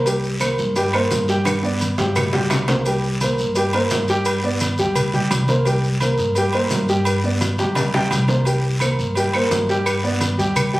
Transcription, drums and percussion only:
0.06 cowbell, high conga, low agogo, long guiro, maracas
0.24 high conga, maracas
0.40 cowbell, high conga, low timbale, low agogo, short guiro, claves, maracas
0.58 high conga, short guiro, maracas
0.76 cowbell, high conga, low agogo, long guiro, maracas
0.93 high conga, low agogo, claves, maracas
1.11 cowbell, high conga, low timbale, low agogo, short guiro, maracas
1.28 cowbell, high conga, short guiro, maracas
1.45 cowbell, high conga, high timbale, low agogo, long guiro, claves, maracas
1.63 high timbale, maracas
1.80 cowbell, high conga, low agogo, short guiro, maracas
1.98 high conga, low timbale, short guiro, maracas
2.16 cowbell, low conga, low timbale, low agogo, long guiro, claves, maracas
2.33 high bongo, low conga, low timbale, maracas
2.50 cowbell, low bongo, low conga, low timbale, low agogo, short guiro, claves, maracas
2.68 cowbell, low bongo, low conga, low timbale, low agogo, short guiro, maracas
2.86 cowbell, high conga, low agogo, long guiro, maracas
3.03 high conga, maracas
3.21 cowbell, high conga, low timbale, low agogo, short guiro, maracas
3.38 high conga, short guiro, maracas
3.55 cowbell, high conga, low agogo, long guiro, maracas
3.73 high conga, low agogo, maracas
3.90 cowbell, high conga, low timbale, low agogo, short guiro, maracas
4.08 cowbell, high conga, short guiro, maracas
4.25 cowbell, high conga, low agogo, long guiro, maracas
4.43 high conga, maracas
4.60 cowbell, high conga, low timbale, low agogo, short guiro, maracas
4.78 high conga, short guiro, maracas
4.95 cowbell, high conga, low conga, low agogo, long guiro, maracas
5.14 high conga, low conga, maracas
5.31 cowbell, high conga, low timbale, low agogo, short guiro, maracas
5.48 cowbell, high conga, low agogo, short guiro, maracas
5.65 cowbell, high conga, low agogo, long guiro, maracas
5.84 high conga, maracas
6.00 cowbell, high conga, low timbale, low agogo, short guiro, maracas
6.18 high conga, short guiro, maracas
6.35 cowbell, high conga, low agogo, long guiro, maracas
6.53 high conga, low agogo, maracas
6.70 cowbell, high conga, low timbale, low agogo, short guiro, maracas
6.88 cowbell, high conga, short guiro, maracas
7.05 cowbell, high conga, low agogo, long guiro, maracas
7.24 high conga, maracas
7.41 cowbell, high bongo, high conga, low timbale, low agogo, short guiro, maracas
7.58 high bongo, high conga, short guiro, maracas
7.75 cowbell, low bongo, high conga, low conga, low agogo, long guiro, maracas
7.93 low bongo, high conga, low conga, maracas
8.10 cowbell, high conga, low timbale, low agogo, short guiro, maracas
8.28 cowbell, low bongo, high conga, low agogo, short guiro, maracas
8.45 cowbell, high conga, low agogo, long guiro, maracas
8.63 high conga, maracas
8.80 cowbell, high conga, low timbale, low agogo, short guiro, claves, maracas
8.98 high conga, short guiro, maracas
9.15 cowbell, high conga, low agogo, long guiro, maracas
9.33 high conga, low agogo, claves, maracas
9.51 cowbell, high conga, low timbale, low agogo, short guiro, maracas
9.69 cowbell, high conga, short guiro, maracas
9.86 cowbell, high conga, low agogo, long guiro, claves, maracas
10.04 high conga, maracas
10.21 cowbell, high conga, low timbale, low agogo, short guiro, maracas
10.39 high conga, short guiro, maracas
10.56 cowbell, high conga, low conga, low agogo, long guiro, claves, maracas
10.74 high conga, low conga, maracas

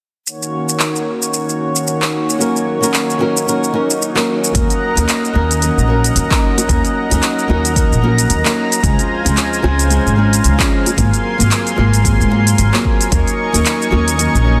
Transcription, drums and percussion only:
0.27 shaker
0.42 shaker
0.69 shaker
0.80 clap, shaker
0.96 shaker
1.22 shaker
1.34 shaker
1.49 shaker
1.76 shaker
1.87 shaker
2.02 clap, shaker
2.30 shaker
2.41 shaker
2.56 shaker
2.83 high bongo, shaker
2.94 clap, shaker
3.10 shaker
3.21 high bongo
3.37 shaker
3.48 shaker
3.64 shaker
3.74 high bongo
3.91 shaker
4.02 shaker
4.17 clap, shaker
4.44 shaker
4.55 kick, closed hi-hat, shaker
4.70 closed hi-hat, shaker
4.97 closed hi-hat, shaker
5.09 clap, closed hi-hat, shaker
5.25 shaker
5.35 high bongo
5.51 closed hi-hat, shaker
5.62 closed hi-hat, shaker
5.79 shaker
6.04 closed hi-hat, shaker
6.16 closed hi-hat, shaker
6.31 kick, clap, shaker
6.58 closed hi-hat, high bongo, shaker
6.69 kick, closed hi-hat, shaker
6.85 closed hi-hat, shaker
7.11 closed hi-hat, high bongo, shaker
7.23 clap, closed hi-hat, shaker
7.39 shaker
7.50 high bongo
7.65 closed hi-hat, shaker
7.76 kick, closed hi-hat, shaker
7.93 shaker
8.04 high bongo
8.18 closed hi-hat, shaker
8.30 closed hi-hat, shaker
8.45 clap, shaker
8.72 closed hi-hat, shaker
8.83 kick, closed hi-hat, shaker
8.99 closed hi-hat, shaker
9.26 closed hi-hat, shaker
9.37 clap, closed hi-hat, shaker
9.53 shaker
9.64 high bongo
9.79 closed hi-hat, shaker
9.90 closed hi-hat, shaker
10.07 shaker
10.33 closed hi-hat, shaker
10.44 closed hi-hat, shaker
10.60 kick, clap, shaker
10.86 closed hi-hat, high bongo, shaker
10.98 kick, closed hi-hat, shaker
11.14 closed hi-hat, shaker
11.40 closed hi-hat, high bongo, shaker
11.51 clap, closed hi-hat, shaker
11.67 closed hi-hat, shaker
11.78 high bongo
11.93 closed hi-hat, shaker
12.05 kick, closed hi-hat, shaker
12.21 shaker
12.32 high bongo
12.47 closed hi-hat, shaker
12.58 closed hi-hat, shaker
12.74 clap, shaker
12.85 kick
13.01 closed hi-hat, shaker
13.12 kick, closed hi-hat, shaker
13.27 closed hi-hat, shaker
13.54 closed hi-hat, shaker
13.66 clap, closed hi-hat, shaker
13.82 shaker
13.92 high bongo
14.08 closed hi-hat, shaker
14.19 closed hi-hat, shaker
14.35 shaker

